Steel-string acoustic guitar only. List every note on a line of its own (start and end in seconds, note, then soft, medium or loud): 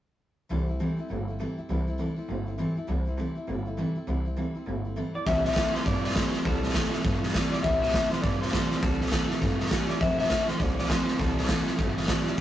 0.49 0.68 C3 medium
0.49 0.68 E3 medium
0.49 0.69 G3 medium
0.49 0.68 C4 medium
0.49 0.67 E4 medium
0.49 0.66 A4 medium
0.67 0.79 G3 soft
0.67 0.80 C4 soft
0.67 0.80 E4 medium
0.67 0.79 A4 medium
0.79 0.98 C3 medium
0.79 0.98 E3 medium
0.79 0.98 G3 medium
0.79 0.98 C4 medium
0.79 0.97 E4 medium
0.79 0.96 A4 medium
0.97 1.07 G3 soft
0.97 1.08 C4 medium
0.97 1.09 E4 medium
0.97 1.09 A4 medium
1.08 1.27 G3 medium
1.08 1.28 C4 medium
1.08 1.28 E4 medium
1.08 1.27 A4 medium
1.28 1.39 G3 soft
1.28 1.39 C4 soft
1.28 1.39 E4 soft
1.28 1.39 A4 medium
1.39 1.58 C3 medium
1.39 1.58 E3 medium
1.39 1.58 G3 medium
1.39 1.58 C4 medium
1.39 1.57 E4 loud
1.39 1.56 A4 medium
1.57 1.68 G3 soft
1.57 1.69 C4 medium
1.57 1.69 E4 medium
1.57 1.69 A4 medium
1.69 1.88 C3 medium
1.69 1.88 E3 medium
1.69 1.88 G3 medium
1.69 1.87 C4 medium
1.69 1.86 E4 medium
1.69 1.86 A4 medium
1.87 1.98 G3 soft
1.87 1.98 C4 medium
1.87 1.99 E4 medium
1.87 1.99 A4 medium
1.98 2.17 C3 medium
1.98 2.17 E3 medium
1.98 2.17 G3 medium
1.98 2.17 C4 medium
1.98 2.16 E4 medium
1.98 2.15 A4 medium
2.16 2.27 G3 soft
2.16 2.28 C4 medium
2.16 2.29 E4 medium
2.16 2.28 A4 medium
2.28 2.47 G3 medium
2.28 2.47 C4 medium
2.28 2.46 E4 medium
2.28 2.45 A4 medium
2.46 2.57 G3 soft
2.46 2.58 C4 soft
2.46 2.58 E4 soft
2.46 2.58 A4 medium
2.58 2.77 C3 medium
2.58 2.77 E3 medium
2.58 2.77 G3 medium
2.58 2.77 C4 loud
2.58 2.76 E4 loud
2.58 2.75 A4 loud
2.76 2.87 G3 soft
2.76 2.87 C4 medium
2.76 2.88 E4 medium
2.76 2.88 A4 medium
2.87 3.06 C3 medium
2.87 3.06 E3 medium
2.87 3.07 G3 medium
2.87 3.06 C4 medium
2.87 3.05 E4 medium
2.87 3.04 A4 medium
3.05 3.17 G3 medium
3.05 3.18 C4 medium
3.05 3.18 E4 soft
3.05 3.17 A4 medium
3.18 3.36 C3 medium
3.18 3.37 E3 medium
3.18 3.37 G3 medium
3.18 3.36 C4 medium
3.18 3.35 E4 medium
3.18 3.34 A4 loud
3.35 3.46 G3 medium
3.35 3.47 C4 medium
3.35 3.48 E4 medium
3.35 3.47 A4 medium
3.47 3.66 G3 medium
3.47 3.66 C4 medium
3.47 3.65 E4 medium
3.47 3.64 A4 medium
3.65 3.77 G3 soft
3.65 3.77 C4 medium
3.65 3.78 E4 medium
3.65 3.77 A4 medium
3.77 3.96 C3 medium
3.77 3.96 E3 loud
3.77 3.97 G3 medium
3.77 3.96 C4 loud
3.77 3.95 E4 medium
3.77 3.94 A4 medium
3.95 4.07 G3 soft
3.95 4.07 C4 medium
3.95 4.07 E4 medium
3.95 4.07 A4 medium
4.07 4.26 C3 medium
4.07 4.26 E3 medium
4.07 4.26 G3 medium
4.07 4.26 C4 medium
4.07 4.25 E4 medium
4.07 4.24 A4 medium
4.25 4.36 G3 soft
4.25 4.36 C4 medium
4.25 4.37 E4 medium
4.25 4.37 A4 medium
4.36 4.55 C3 medium
4.36 4.55 E3 medium
4.36 4.56 G3 medium
4.36 4.55 C4 medium
4.36 4.54 E4 medium
4.36 4.53 A4 medium
4.55 4.65 G3 medium
4.55 4.66 C4 medium
4.55 4.67 E4 medium
4.55 4.67 A4 medium
4.66 4.85 G3 medium
4.66 4.85 C4 medium
4.66 4.84 E4 medium
4.66 4.83 A4 medium
4.85 4.96 G3 soft
4.85 4.96 C4 soft
4.85 4.96 E4 soft
4.85 4.96 A4 soft
4.96 5.15 C3 medium
4.96 5.15 E3 medium
4.96 5.15 G3 medium
4.96 5.15 C4 medium
4.96 5.14 E4 medium
4.96 5.13 A4 loud
5.15 5.26 G3 soft
5.15 5.26 C4 soft
5.15 5.26 E4 medium
5.15 5.26 A4 medium
5.26 5.44 C3 medium
5.26 5.45 E3 medium
5.26 5.45 G3 medium
5.26 5.45 C4 medium
5.26 5.44 E4 medium
5.26 5.43 A4 medium
5.45 5.56 C4 soft
5.45 5.56 E4 medium
5.45 5.56 A4 medium
5.55 5.74 C3 medium
5.55 5.74 E3 medium
5.55 5.75 G3 medium
5.55 5.74 C4 medium
5.55 5.74 E4 medium
5.55 5.73 A4 medium
5.74 5.83 G3 medium
5.74 5.84 C4 soft
5.74 5.85 E4 medium
5.74 5.85 A4 medium
5.85 6.04 G3 medium
5.85 6.04 C4 medium
5.85 6.04 E4 medium
5.85 6.03 A4 medium
6.04 6.15 G3 soft
6.04 6.16 C4 soft
6.04 6.16 E4 soft
6.04 6.15 A4 medium
6.15 6.34 C3 medium
6.15 6.34 E3 medium
6.15 6.34 G3 medium
6.15 6.34 C4 medium
6.15 6.34 E4 medium
6.15 6.33 A4 medium
6.34 6.45 G3 soft
6.34 6.45 C4 medium
6.34 6.46 E4 medium
6.34 6.45 A4 medium
6.45 6.64 C3 medium
6.45 6.64 E3 medium
6.45 6.64 G3 medium
6.45 6.64 C4 medium
6.45 6.63 E4 medium
6.45 6.62 A4 medium
6.63 6.74 G3 soft
6.63 6.74 C4 medium
6.63 6.75 E4 medium
6.63 6.75 A4 medium
6.74 6.93 C3 medium
6.74 6.93 E3 medium
6.74 6.93 G3 medium
6.74 6.93 C4 medium
6.74 6.93 E4 medium
6.74 6.91 A4 medium
6.93 7.03 G3 medium
6.93 7.04 C4 medium
6.93 7.05 E4 medium
6.93 7.04 A4 medium
7.04 7.23 G3 medium
7.04 7.23 C4 medium
7.04 7.22 E4 medium
7.04 7.21 A4 medium
7.22 7.34 G3 soft
7.22 7.34 C4 medium
7.22 7.34 E4 medium
7.22 7.34 A4 medium
7.34 7.52 C3 medium
7.34 7.53 E3 medium
7.34 7.53 G3 medium
7.34 7.53 C4 medium
7.34 7.52 E4 loud
7.34 7.51 A4 loud
7.52 7.63 G3 soft
7.52 7.63 C4 soft
7.52 7.64 E4 medium
7.52 7.64 A4 medium
7.63 7.82 C3 medium
7.63 7.82 E3 medium
7.63 7.82 G3 medium
7.63 7.82 C4 medium
7.63 7.82 E4 medium
7.63 7.81 A4 medium
7.82 7.93 G3 soft
7.82 7.94 C4 soft
7.82 7.94 E4 medium
7.82 7.93 A4 medium
7.94 8.12 C3 medium
7.94 8.12 E3 medium
7.94 8.12 G3 medium
7.94 8.12 C4 medium
7.94 8.11 E4 medium
7.94 8.10 A4 medium
8.11 8.22 G3 medium
8.11 8.23 C4 medium
8.11 8.23 E4 soft
8.11 8.23 A4 medium
8.23 8.41 G3 medium
8.23 8.42 C4 medium
8.23 8.41 E4 medium
8.23 8.40 A4 medium
8.41 8.52 G3 soft
8.41 8.53 C4 soft
8.41 8.53 E4 soft
8.41 8.53 A4 medium
8.53 8.71 C3 medium
8.53 8.71 E3 medium
8.53 8.71 G3 medium
8.53 8.71 C4 medium
8.53 8.71 E4 medium
8.53 8.69 A4 medium
8.71 8.81 G3 soft
8.71 8.82 C4 soft
8.71 8.82 E4 medium
8.71 8.82 A4 medium
8.82 9.00 C3 medium
8.82 9.01 E3 medium
8.82 9.01 G3 medium
8.82 9.01 C4 medium
8.82 9.00 E4 medium
8.82 8.99 A4 medium
9.00 9.11 G3 soft
9.00 9.12 C4 soft
9.00 9.12 E4 soft
9.00 9.12 A4 medium
9.12 9.30 C3 medium
9.12 9.30 E3 medium
9.12 9.31 G3 medium
9.12 9.30 C4 medium
9.12 9.29 E4 medium
9.12 9.28 A4 medium
9.30 9.39 G3 medium
9.30 9.41 C4 medium
9.30 9.41 E4 medium
9.30 9.41 A4 medium
9.41 9.59 G3 medium
9.41 9.59 C4 medium
9.41 9.59 E4 medium
9.41 9.58 A4 medium
9.59 9.70 G3 soft
9.59 9.70 C4 soft
9.59 9.71 E4 soft
9.59 9.71 A4 soft
9.70 9.89 C3 loud
9.70 9.89 E3 medium
9.70 9.90 G3 medium
9.70 9.89 C4 medium
9.70 9.89 E4 loud
9.70 9.87 A4 loud
9.89 10.01 G3 soft
9.89 10.01 C4 soft
9.89 10.01 E4 medium
9.89 10.00 A4 medium
10.00 10.19 F3 medium
10.00 10.19 A3 medium
10.00 10.20 D4 medium
10.00 10.19 A4 medium
10.00 10.17 C5 medium
10.18 10.30 D4 soft
10.18 10.31 A4 medium
10.18 10.30 C5 medium
10.30 10.49 F3 medium
10.30 10.49 A3 medium
10.30 10.49 D4 medium
10.30 10.48 A4 medium
10.30 10.46 C5 medium
10.48 10.59 D4 soft
10.48 10.60 A4 medium
10.48 10.60 C5 medium
10.59 10.78 A3 medium
10.59 10.79 D4 medium
10.59 10.79 A4 medium
10.59 10.77 C5 medium
10.78 10.89 A4 soft
10.78 10.90 C5 medium
10.89 11.08 F3 medium
10.89 11.08 A3 medium
10.89 11.08 D4 medium
10.89 11.07 A4 medium
10.89 11.06 C5 medium
11.07 11.19 D4 soft
11.07 11.19 A4 medium
11.07 11.19 C5 medium
11.18 11.37 C3 medium
11.18 11.37 E3 medium
11.18 11.37 G3 medium
11.18 11.37 C4 medium
11.18 11.37 E4 medium
11.18 11.36 A4 medium
11.38 11.48 G3 soft
11.38 11.49 C4 medium
11.38 11.49 E4 medium
11.49 11.67 C3 medium
11.49 11.67 E3 medium
11.49 11.68 G3 medium
11.49 11.68 C4 medium
11.49 11.66 E4 medium
11.49 11.66 A4 medium
11.67 11.77 G3 medium
11.67 11.78 C4 medium
11.67 11.79 E4 medium
11.67 11.78 A4 medium
11.78 11.97 G3 medium
11.78 11.97 C4 medium
11.78 11.96 E4 medium
11.78 11.95 A4 medium
11.96 12.07 G3 medium
11.96 12.08 C4 soft
11.96 12.08 E4 soft
11.96 12.08 A4 soft
12.07 12.26 C3 loud
12.07 12.27 E3 medium
12.07 12.27 G3 loud
12.07 12.26 C4 loud
12.07 12.25 E4 medium
12.07 12.24 A4 loud
12.26 12.37 G3 medium
12.26 12.37 C4 medium
12.26 12.37 E4 medium
12.26 12.37 A4 medium
12.37 12.41 C3 medium
12.37 12.41 E3 medium